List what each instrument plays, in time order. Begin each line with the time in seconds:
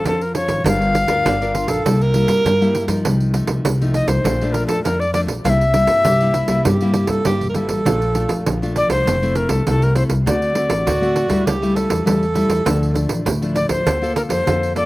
0.04 upright bass F2, nylon-string guitar F3 C#4 F4 C5, recorder A4, pandeiro
0.21 recorder A#4, pandeiro
0.35 nylon-string guitar C#4 F4 C5, recorder C#5, pandeiro
0.48 upright bass G#1, pandeiro
0.64 upright bass G1, nylon-string guitar G3 D4 F4 A#4, recorder F5, pandeiro
0.82 pandeiro
0.95 pandeiro
1.07 upright bass D2, nylon-string guitar D4 F4 A#4, pandeiro
1.25 upright bass G1, nylon-string guitar D3, tenor saxophone D4, pandeiro
1.41 tenor saxophone D4, nylon-string guitar D4 F4 A#4, pandeiro
1.54 tenor saxophone F4, pandeiro
1.68 upright bass A#1, tenor saxophone A4, pandeiro
1.86 upright bass C2, nylon-string guitar C3 G3 A#3 E4, pandeiro
2.01 tenor saxophone A#4, pandeiro
2.14 nylon-string guitar G3 A#3 E4, pandeiro
2.28 upright bass G2, pandeiro
2.45 upright bass G2, nylon-string guitar G2, pandeiro
2.61 nylon-string guitar G3 A#3 E4, pandeiro
2.75 pandeiro
2.88 upright bass G2, nylon-string guitar F3 D#4, pandeiro
3.05 upright bass C2, nylon-string guitar C3, pandeiro
3.20 pandeiro
3.34 nylon-string guitar F3 A3 D#4, pandeiro
3.47 upright bass C2, pandeiro
3.65 upright bass C2, nylon-string guitar C3, pandeiro
3.81 nylon-string guitar F3 A3 D#4, pandeiro
3.94 recorder D#5, pandeiro
4.07 upright bass C2, recorder C5, pandeiro
4.24 upright bass A#1, nylon-string guitar A#2 F3 A3 D4, pandeiro
4.41 nylon-string guitar F3 A3 D4, pandeiro
4.53 recorder A#4, pandeiro
4.66 upright bass F2, recorder A4, pandeiro
4.84 upright bass F2, nylon-string guitar F2 F3 A3 D4, recorder A#4, pandeiro
5.00 recorder D5, pandeiro
5.13 nylon-string guitar F3 A3 D4, recorder D5, pandeiro
5.27 upright bass A#1, pandeiro
5.45 upright bass C2, nylon-string guitar C3 G3 A#3 E4, recorder F5, pandeiro
5.50 recorder E5
5.61 pandeiro
5.74 nylon-string guitar G3 A#3 E4, pandeiro
5.87 upright bass G2, pandeiro
6.05 upright bass C2, nylon-string guitar G2, tenor saxophone G4, pandeiro
6.21 nylon-string guitar G3 A#3 E4, pandeiro
6.34 tenor saxophone E4, pandeiro
6.48 upright bass C2, nylon-string guitar G3 A#3 E4, pandeiro
6.65 upright bass G2, nylon-string guitar C3, tenor saxophone G4, pandeiro
6.81 nylon-string guitar G3 A#3 E4, pandeiro
6.94 pandeiro
7.07 upright bass G2, tenor saxophone A4, pandeiro
7.25 nylon-string guitar G2 G3 A#3 E4, upright bass G2, tenor saxophone G4, pandeiro
7.41 upright bass E1, pandeiro
7.49 tenor saxophone A#4
7.54 upright bass G1, nylon-string guitar G3 A#3 E4, tenor saxophone A4, pandeiro
7.68 upright bass A1, pandeiro
7.85 upright bass A#1, nylon-string guitar A#2 A3 D4 F4, pandeiro
8.02 pandeiro
8.15 nylon-string guitar A3 D4 F4, pandeiro
8.28 upright bass F2, pandeiro
8.46 upright bass A#1, nylon-string guitar F3, pandeiro
8.62 nylon-string guitar A3 D4 F4, pandeiro
8.76 recorder D5, pandeiro
8.88 upright bass C2, recorder C5, pandeiro
9.05 upright bass F1, nylon-string guitar F3 A3 C4 E4, pandeiro
9.22 nylon-string guitar A3 C4 E4, pandeiro
9.35 recorder A#4, pandeiro
9.49 upright bass C2, recorder A4, pandeiro
9.67 upright bass C2, nylon-string guitar C3 A3 C4 E4, recorder A4, pandeiro
9.82 recorder A#4, pandeiro
9.95 nylon-string guitar A3 C4 E4, recorder C5, pandeiro
10.09 upright bass C2, pandeiro
10.26 upright bass D2, nylon-string guitar D3 A3 C4 F#4, recorder D5, pandeiro
10.42 pandeiro
10.55 nylon-string guitar A3 C4 F#4, pandeiro
10.69 upright bass A1, pandeiro
10.86 upright bass D2, nylon-string guitar A2, tenor saxophone F#4, pandeiro
11.01 nylon-string guitar A3 C4 F#4, pandeiro
11.16 pandeiro
11.28 upright bass D2, nylon-string guitar G3 A3 E4, pandeiro
11.46 upright bass C#2, nylon-string guitar C#3, tenor saxophone G4, pandeiro
11.62 nylon-string guitar G3 A3 E4, pandeiro
11.75 tenor saxophone A4, pandeiro
11.89 upright bass E2, pandeiro
12.05 upright bass E2, nylon-string guitar C#3 G3 A3 E4, tenor saxophone A4, pandeiro
12.23 pandeiro
12.34 nylon-string guitar G3 A3 E4, pandeiro
12.49 upright bass E2, pandeiro
12.65 upright bass D2, nylon-string guitar D3 F3 A3 D4, pandeiro
12.83 pandeiro
12.94 nylon-string guitar F3 A3 D4, pandeiro
13.09 upright bass A1, pandeiro
13.25 upright bass D2, nylon-string guitar A2, pandeiro
13.42 nylon-string guitar F3 A3 D4, pandeiro
13.55 recorder D5, pandeiro
13.69 upright bass D2, recorder C5, pandeiro
13.86 upright bass D2, nylon-string guitar D3 A#3 F4 A4, pandeiro
14.02 nylon-string guitar A#3 F4 A4, pandeiro
14.16 recorder A#4, pandeiro
14.29 upright bass F2, recorder C5, pandeiro
14.46 upright bass F2, nylon-string guitar D3 A#3 F4 A4, pandeiro
14.63 pandeiro
14.75 nylon-string guitar A#3 F4 A4, recorder D5, pandeiro